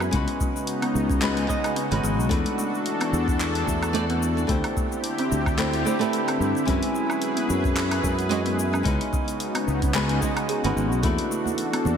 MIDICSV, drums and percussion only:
0, 0, Header, 1, 2, 480
1, 0, Start_track
1, 0, Tempo, 545455
1, 114, Time_signature, 4, 2, 24, 8
1, 10534, End_track
2, 0, Start_track
2, 0, Title_t, "Drums"
2, 4, Note_on_c, 9, 77, 72
2, 12, Note_on_c, 9, 82, 43
2, 92, Note_off_c, 9, 77, 0
2, 100, Note_off_c, 9, 82, 0
2, 111, Note_on_c, 9, 46, 62
2, 113, Note_on_c, 9, 36, 119
2, 120, Note_on_c, 9, 82, 34
2, 199, Note_off_c, 9, 46, 0
2, 201, Note_off_c, 9, 36, 0
2, 208, Note_off_c, 9, 82, 0
2, 244, Note_on_c, 9, 46, 42
2, 332, Note_off_c, 9, 46, 0
2, 352, Note_on_c, 9, 36, 110
2, 358, Note_on_c, 9, 82, 82
2, 440, Note_off_c, 9, 36, 0
2, 446, Note_off_c, 9, 82, 0
2, 495, Note_on_c, 9, 82, 48
2, 583, Note_off_c, 9, 82, 0
2, 592, Note_on_c, 9, 46, 61
2, 600, Note_on_c, 9, 82, 34
2, 680, Note_off_c, 9, 46, 0
2, 688, Note_off_c, 9, 82, 0
2, 725, Note_on_c, 9, 46, 44
2, 725, Note_on_c, 9, 77, 75
2, 813, Note_off_c, 9, 46, 0
2, 813, Note_off_c, 9, 77, 0
2, 841, Note_on_c, 9, 82, 83
2, 929, Note_off_c, 9, 82, 0
2, 965, Note_on_c, 9, 36, 114
2, 972, Note_on_c, 9, 82, 48
2, 1053, Note_off_c, 9, 36, 0
2, 1060, Note_off_c, 9, 82, 0
2, 1071, Note_on_c, 9, 39, 73
2, 1071, Note_on_c, 9, 46, 63
2, 1080, Note_on_c, 9, 82, 33
2, 1159, Note_off_c, 9, 39, 0
2, 1159, Note_off_c, 9, 46, 0
2, 1168, Note_off_c, 9, 82, 0
2, 1206, Note_on_c, 9, 46, 40
2, 1294, Note_off_c, 9, 46, 0
2, 1312, Note_on_c, 9, 36, 59
2, 1319, Note_on_c, 9, 82, 79
2, 1400, Note_off_c, 9, 36, 0
2, 1407, Note_off_c, 9, 82, 0
2, 1445, Note_on_c, 9, 46, 33
2, 1445, Note_on_c, 9, 77, 80
2, 1454, Note_on_c, 9, 82, 48
2, 1533, Note_off_c, 9, 46, 0
2, 1533, Note_off_c, 9, 77, 0
2, 1542, Note_off_c, 9, 82, 0
2, 1552, Note_on_c, 9, 46, 63
2, 1561, Note_on_c, 9, 82, 34
2, 1640, Note_off_c, 9, 46, 0
2, 1649, Note_off_c, 9, 82, 0
2, 1687, Note_on_c, 9, 46, 39
2, 1775, Note_off_c, 9, 46, 0
2, 1799, Note_on_c, 9, 82, 79
2, 1887, Note_off_c, 9, 82, 0
2, 1935, Note_on_c, 9, 82, 44
2, 2023, Note_off_c, 9, 82, 0
2, 2032, Note_on_c, 9, 36, 113
2, 2033, Note_on_c, 9, 46, 67
2, 2041, Note_on_c, 9, 82, 32
2, 2120, Note_off_c, 9, 36, 0
2, 2121, Note_off_c, 9, 46, 0
2, 2129, Note_off_c, 9, 82, 0
2, 2164, Note_on_c, 9, 46, 39
2, 2252, Note_off_c, 9, 46, 0
2, 2279, Note_on_c, 9, 82, 83
2, 2367, Note_off_c, 9, 82, 0
2, 2416, Note_on_c, 9, 82, 47
2, 2504, Note_off_c, 9, 82, 0
2, 2515, Note_on_c, 9, 46, 62
2, 2523, Note_on_c, 9, 82, 30
2, 2603, Note_off_c, 9, 46, 0
2, 2611, Note_off_c, 9, 82, 0
2, 2649, Note_on_c, 9, 46, 45
2, 2649, Note_on_c, 9, 77, 86
2, 2737, Note_off_c, 9, 46, 0
2, 2737, Note_off_c, 9, 77, 0
2, 2761, Note_on_c, 9, 82, 82
2, 2849, Note_off_c, 9, 82, 0
2, 2884, Note_on_c, 9, 36, 103
2, 2894, Note_on_c, 9, 82, 47
2, 2972, Note_off_c, 9, 36, 0
2, 2982, Note_off_c, 9, 82, 0
2, 2996, Note_on_c, 9, 39, 75
2, 2996, Note_on_c, 9, 46, 63
2, 3005, Note_on_c, 9, 82, 32
2, 3084, Note_off_c, 9, 39, 0
2, 3084, Note_off_c, 9, 46, 0
2, 3093, Note_off_c, 9, 82, 0
2, 3126, Note_on_c, 9, 46, 42
2, 3214, Note_off_c, 9, 46, 0
2, 3231, Note_on_c, 9, 36, 57
2, 3242, Note_on_c, 9, 82, 78
2, 3319, Note_off_c, 9, 36, 0
2, 3330, Note_off_c, 9, 82, 0
2, 3366, Note_on_c, 9, 46, 31
2, 3366, Note_on_c, 9, 77, 88
2, 3375, Note_on_c, 9, 82, 47
2, 3454, Note_off_c, 9, 46, 0
2, 3454, Note_off_c, 9, 77, 0
2, 3463, Note_off_c, 9, 82, 0
2, 3473, Note_on_c, 9, 46, 62
2, 3482, Note_on_c, 9, 82, 32
2, 3561, Note_off_c, 9, 46, 0
2, 3570, Note_off_c, 9, 82, 0
2, 3606, Note_on_c, 9, 46, 39
2, 3694, Note_off_c, 9, 46, 0
2, 3719, Note_on_c, 9, 82, 82
2, 3807, Note_off_c, 9, 82, 0
2, 3854, Note_on_c, 9, 82, 42
2, 3942, Note_off_c, 9, 82, 0
2, 3952, Note_on_c, 9, 36, 102
2, 3952, Note_on_c, 9, 46, 64
2, 3960, Note_on_c, 9, 82, 30
2, 4040, Note_off_c, 9, 36, 0
2, 4040, Note_off_c, 9, 46, 0
2, 4048, Note_off_c, 9, 82, 0
2, 4083, Note_on_c, 9, 46, 40
2, 4083, Note_on_c, 9, 77, 81
2, 4171, Note_off_c, 9, 46, 0
2, 4171, Note_off_c, 9, 77, 0
2, 4191, Note_on_c, 9, 36, 95
2, 4198, Note_on_c, 9, 82, 76
2, 4279, Note_off_c, 9, 36, 0
2, 4286, Note_off_c, 9, 82, 0
2, 4330, Note_on_c, 9, 82, 45
2, 4418, Note_off_c, 9, 82, 0
2, 4432, Note_on_c, 9, 46, 61
2, 4441, Note_on_c, 9, 82, 32
2, 4520, Note_off_c, 9, 46, 0
2, 4529, Note_off_c, 9, 82, 0
2, 4563, Note_on_c, 9, 46, 47
2, 4651, Note_off_c, 9, 46, 0
2, 4681, Note_on_c, 9, 82, 77
2, 4769, Note_off_c, 9, 82, 0
2, 4806, Note_on_c, 9, 36, 104
2, 4807, Note_on_c, 9, 77, 84
2, 4816, Note_on_c, 9, 82, 42
2, 4894, Note_off_c, 9, 36, 0
2, 4895, Note_off_c, 9, 77, 0
2, 4904, Note_off_c, 9, 82, 0
2, 4915, Note_on_c, 9, 39, 70
2, 4915, Note_on_c, 9, 46, 66
2, 4924, Note_on_c, 9, 82, 34
2, 5003, Note_off_c, 9, 39, 0
2, 5003, Note_off_c, 9, 46, 0
2, 5012, Note_off_c, 9, 82, 0
2, 5046, Note_on_c, 9, 46, 45
2, 5134, Note_off_c, 9, 46, 0
2, 5163, Note_on_c, 9, 82, 78
2, 5251, Note_off_c, 9, 82, 0
2, 5288, Note_on_c, 9, 46, 33
2, 5297, Note_on_c, 9, 82, 45
2, 5376, Note_off_c, 9, 46, 0
2, 5385, Note_off_c, 9, 82, 0
2, 5397, Note_on_c, 9, 46, 65
2, 5406, Note_on_c, 9, 82, 31
2, 5485, Note_off_c, 9, 46, 0
2, 5494, Note_off_c, 9, 82, 0
2, 5529, Note_on_c, 9, 46, 41
2, 5529, Note_on_c, 9, 77, 76
2, 5617, Note_off_c, 9, 46, 0
2, 5617, Note_off_c, 9, 77, 0
2, 5645, Note_on_c, 9, 82, 78
2, 5733, Note_off_c, 9, 82, 0
2, 5778, Note_on_c, 9, 82, 41
2, 5866, Note_off_c, 9, 82, 0
2, 5873, Note_on_c, 9, 36, 111
2, 5875, Note_on_c, 9, 46, 68
2, 5884, Note_on_c, 9, 82, 33
2, 5961, Note_off_c, 9, 36, 0
2, 5963, Note_off_c, 9, 46, 0
2, 5972, Note_off_c, 9, 82, 0
2, 6006, Note_on_c, 9, 46, 47
2, 6094, Note_off_c, 9, 46, 0
2, 6119, Note_on_c, 9, 82, 77
2, 6207, Note_off_c, 9, 82, 0
2, 6246, Note_on_c, 9, 77, 86
2, 6254, Note_on_c, 9, 82, 42
2, 6334, Note_off_c, 9, 77, 0
2, 6342, Note_off_c, 9, 82, 0
2, 6350, Note_on_c, 9, 46, 66
2, 6359, Note_on_c, 9, 82, 29
2, 6438, Note_off_c, 9, 46, 0
2, 6447, Note_off_c, 9, 82, 0
2, 6485, Note_on_c, 9, 46, 47
2, 6573, Note_off_c, 9, 46, 0
2, 6600, Note_on_c, 9, 82, 76
2, 6688, Note_off_c, 9, 82, 0
2, 6726, Note_on_c, 9, 36, 96
2, 6732, Note_on_c, 9, 82, 42
2, 6814, Note_off_c, 9, 36, 0
2, 6820, Note_off_c, 9, 82, 0
2, 6834, Note_on_c, 9, 39, 75
2, 6834, Note_on_c, 9, 46, 68
2, 6842, Note_on_c, 9, 82, 30
2, 6922, Note_off_c, 9, 39, 0
2, 6922, Note_off_c, 9, 46, 0
2, 6930, Note_off_c, 9, 82, 0
2, 6965, Note_on_c, 9, 46, 46
2, 6965, Note_on_c, 9, 77, 77
2, 7053, Note_off_c, 9, 46, 0
2, 7053, Note_off_c, 9, 77, 0
2, 7073, Note_on_c, 9, 36, 58
2, 7079, Note_on_c, 9, 82, 76
2, 7161, Note_off_c, 9, 36, 0
2, 7167, Note_off_c, 9, 82, 0
2, 7203, Note_on_c, 9, 46, 34
2, 7212, Note_on_c, 9, 82, 46
2, 7291, Note_off_c, 9, 46, 0
2, 7300, Note_off_c, 9, 82, 0
2, 7312, Note_on_c, 9, 46, 66
2, 7321, Note_on_c, 9, 82, 32
2, 7400, Note_off_c, 9, 46, 0
2, 7409, Note_off_c, 9, 82, 0
2, 7443, Note_on_c, 9, 46, 44
2, 7531, Note_off_c, 9, 46, 0
2, 7561, Note_on_c, 9, 82, 74
2, 7649, Note_off_c, 9, 82, 0
2, 7688, Note_on_c, 9, 77, 76
2, 7697, Note_on_c, 9, 82, 43
2, 7776, Note_off_c, 9, 77, 0
2, 7785, Note_off_c, 9, 82, 0
2, 7792, Note_on_c, 9, 36, 108
2, 7792, Note_on_c, 9, 46, 66
2, 7801, Note_on_c, 9, 82, 31
2, 7880, Note_off_c, 9, 36, 0
2, 7880, Note_off_c, 9, 46, 0
2, 7889, Note_off_c, 9, 82, 0
2, 7929, Note_on_c, 9, 46, 44
2, 8017, Note_off_c, 9, 46, 0
2, 8032, Note_on_c, 9, 36, 106
2, 8039, Note_on_c, 9, 82, 79
2, 8120, Note_off_c, 9, 36, 0
2, 8127, Note_off_c, 9, 82, 0
2, 8165, Note_on_c, 9, 46, 34
2, 8173, Note_on_c, 9, 82, 43
2, 8253, Note_off_c, 9, 46, 0
2, 8261, Note_off_c, 9, 82, 0
2, 8273, Note_on_c, 9, 46, 67
2, 8281, Note_on_c, 9, 82, 33
2, 8361, Note_off_c, 9, 46, 0
2, 8369, Note_off_c, 9, 82, 0
2, 8406, Note_on_c, 9, 46, 49
2, 8406, Note_on_c, 9, 77, 80
2, 8494, Note_off_c, 9, 46, 0
2, 8494, Note_off_c, 9, 77, 0
2, 8518, Note_on_c, 9, 82, 74
2, 8606, Note_off_c, 9, 82, 0
2, 8643, Note_on_c, 9, 46, 34
2, 8646, Note_on_c, 9, 36, 99
2, 8652, Note_on_c, 9, 82, 45
2, 8731, Note_off_c, 9, 46, 0
2, 8734, Note_off_c, 9, 36, 0
2, 8740, Note_off_c, 9, 82, 0
2, 8749, Note_on_c, 9, 39, 82
2, 8749, Note_on_c, 9, 46, 65
2, 8758, Note_on_c, 9, 82, 33
2, 8837, Note_off_c, 9, 39, 0
2, 8837, Note_off_c, 9, 46, 0
2, 8846, Note_off_c, 9, 82, 0
2, 8882, Note_on_c, 9, 46, 49
2, 8970, Note_off_c, 9, 46, 0
2, 8992, Note_on_c, 9, 36, 58
2, 8996, Note_on_c, 9, 82, 80
2, 9080, Note_off_c, 9, 36, 0
2, 9084, Note_off_c, 9, 82, 0
2, 9123, Note_on_c, 9, 46, 37
2, 9123, Note_on_c, 9, 77, 85
2, 9131, Note_on_c, 9, 82, 46
2, 9211, Note_off_c, 9, 46, 0
2, 9211, Note_off_c, 9, 77, 0
2, 9219, Note_off_c, 9, 82, 0
2, 9230, Note_on_c, 9, 46, 69
2, 9239, Note_on_c, 9, 82, 32
2, 9318, Note_off_c, 9, 46, 0
2, 9327, Note_off_c, 9, 82, 0
2, 9367, Note_on_c, 9, 46, 43
2, 9455, Note_off_c, 9, 46, 0
2, 9481, Note_on_c, 9, 82, 75
2, 9569, Note_off_c, 9, 82, 0
2, 9612, Note_on_c, 9, 82, 45
2, 9700, Note_off_c, 9, 82, 0
2, 9706, Note_on_c, 9, 63, 81
2, 9710, Note_on_c, 9, 46, 68
2, 9713, Note_on_c, 9, 36, 115
2, 9718, Note_on_c, 9, 82, 32
2, 9794, Note_off_c, 9, 63, 0
2, 9798, Note_off_c, 9, 46, 0
2, 9801, Note_off_c, 9, 36, 0
2, 9806, Note_off_c, 9, 82, 0
2, 9843, Note_on_c, 9, 46, 43
2, 9931, Note_off_c, 9, 46, 0
2, 9961, Note_on_c, 9, 82, 85
2, 10049, Note_off_c, 9, 82, 0
2, 10081, Note_on_c, 9, 63, 74
2, 10094, Note_on_c, 9, 82, 46
2, 10169, Note_off_c, 9, 63, 0
2, 10182, Note_off_c, 9, 82, 0
2, 10189, Note_on_c, 9, 46, 66
2, 10198, Note_on_c, 9, 82, 32
2, 10277, Note_off_c, 9, 46, 0
2, 10286, Note_off_c, 9, 82, 0
2, 10327, Note_on_c, 9, 46, 47
2, 10327, Note_on_c, 9, 77, 83
2, 10415, Note_off_c, 9, 46, 0
2, 10415, Note_off_c, 9, 77, 0
2, 10429, Note_on_c, 9, 63, 92
2, 10440, Note_on_c, 9, 82, 74
2, 10517, Note_off_c, 9, 63, 0
2, 10528, Note_off_c, 9, 82, 0
2, 10534, End_track
0, 0, End_of_file